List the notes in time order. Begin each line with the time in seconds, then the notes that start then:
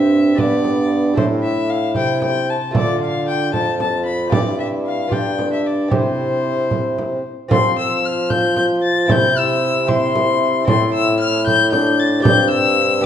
Already playing: G2 C4 D4 G4 C5 E5
0.35 G2 B3 D4 G4 B4, frame drum
0.39 G2 D5
0.64 frame drum
1.14 A2 A3 E4 A4 C5, frame drum
1.43 E5
1.69 F5
1.95 C3 G5, frame drum
2.22 G5, frame drum
2.50 A5
2.71 D3 A3 F4 A4, frame drum
2.75 D3 D5
3.01 F5
3.28 G5
3.53 F2 F4 A5, frame drum
3.80 A5, frame drum
4.05 B5
4.27 G2 C4 F4 G4
4.31 G2 E4 D5, frame drum
4.60 E5
4.87 F5
5.07 B3 F4 G4
5.12 G2 D4 G5, frame drum
5.39 frame drum
5.53 E5
5.66 D5
5.88 C3 C4 E4 G4, frame drum
5.93 C5
6.71 frame drum
6.99 frame drum
7.48 F3 C4 F4 A4 C6, frame drum
7.52 F3
7.78 E6
8.05 F6
8.30 G6, frame drum
8.56 G6, frame drum
8.82 A6
9.06 C3 C4 E4 C5, frame drum
9.11 C3 G6
9.38 E6
9.87 C4 E4 C5 C6, frame drum
10.16 frame drum
10.65 A2 C4 E4 C5 C6, frame drum
10.94 E6
11.20 F6
11.47 G6, frame drum
11.72 D4 G6, frame drum
11.99 A6
12.20 C4 G4 D5
12.24 G2 C4 G6, frame drum
12.50 E6
13.01 B3 G4